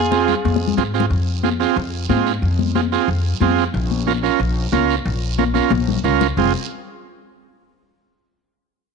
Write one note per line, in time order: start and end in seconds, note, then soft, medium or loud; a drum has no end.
0.00 0.32 F2 loud
0.00 0.74 F4 medium
0.00 0.74 G#4 loud
0.11 0.35 C4 medium
0.11 0.35 F4 medium
0.11 0.35 G#4 medium
0.11 high conga medium
0.11 short guiro medium
0.28 low conga medium
0.28 short guiro medium
0.45 0.71 F2 loud
0.45 high conga medium
0.45 long guiro medium
0.56 high conga medium
0.68 low conga medium
0.77 1.04 G#2 medium
0.77 0.83 C4 medium
0.77 0.83 F4 medium
0.77 0.83 G#4 medium
0.77 low conga medium
0.77 short guiro medium
0.94 1.06 C4 medium
0.94 1.06 F4 medium
0.94 1.06 G#4 medium
0.94 short guiro medium
1.00 low conga medium
1.10 1.63 F2 medium
1.10 long guiro medium
1.43 1.49 C4 medium
1.43 1.49 F4 medium
1.43 1.50 G#4 medium
1.43 high conga medium
1.43 short guiro medium
1.60 1.77 C4 medium
1.60 1.77 F4 medium
1.60 1.77 G#4 medium
1.60 short guiro medium
1.76 2.03 F2 loud
1.76 long guiro medium
2.09 2.36 G#2 loud
2.09 2.32 C4 medium
2.09 2.32 F4 medium
2.09 2.33 G#4 medium
2.09 high conga medium
2.09 short guiro medium
2.27 short guiro medium
2.42 2.95 F2 medium
2.42 long guiro medium
2.59 high conga medium
2.59 low conga medium
2.75 2.81 C4 medium
2.75 2.81 F4 medium
2.75 2.81 G#4 medium
2.75 high conga medium
2.75 short guiro medium
2.92 3.09 C4 medium
2.92 3.09 F4 medium
2.92 3.10 G#4 medium
2.92 short guiro medium
3.08 3.34 F2 medium
3.08 long guiro medium
3.40 3.67 F2 medium
3.40 3.64 C4 medium
3.40 3.64 F4 medium
3.40 3.64 G#4 medium
3.40 high conga medium
3.40 low conga medium
3.40 short guiro medium
3.58 short guiro medium
3.74 4.27 A#1 loud
3.74 long guiro medium
3.91 high conga medium
4.07 4.12 C#4 medium
4.07 4.13 F4 medium
4.07 4.13 A#4 medium
4.07 high conga medium
4.07 short guiro medium
4.23 4.40 C#4 medium
4.23 4.41 F4 medium
4.23 4.41 A#4 medium
4.23 short guiro medium
4.39 4.66 A#1 loud
4.39 long guiro medium
4.72 4.99 C#2 loud
4.72 4.95 C#4 medium
4.72 4.96 F4 medium
4.72 4.96 A#4 medium
4.72 high conga medium
4.72 short guiro medium
4.90 short guiro medium
5.05 5.58 A#1 medium
5.05 long guiro medium
5.38 5.44 C#4 medium
5.38 5.44 F4 medium
5.38 5.44 A#4 loud
5.38 high conga medium
5.38 short guiro medium
5.54 5.72 C#4 medium
5.54 5.72 F4 medium
5.54 5.72 A#4 medium
5.54 high conga medium
5.54 short guiro medium
5.70 5.97 A#1 loud
5.70 high conga medium
5.70 long guiro medium
5.88 low conga medium
6.04 6.30 C#2 medium
6.04 6.27 C#4 medium
6.04 6.27 F4 medium
6.04 6.28 A#4 loud
6.04 low conga medium
6.04 short guiro medium
6.21 low conga medium
6.21 short guiro medium
6.37 6.52 F1 medium
6.37 6.53 C4 medium
6.37 6.53 F4 medium
6.37 6.53 G#4 medium
6.37 low conga medium
6.37 long guiro medium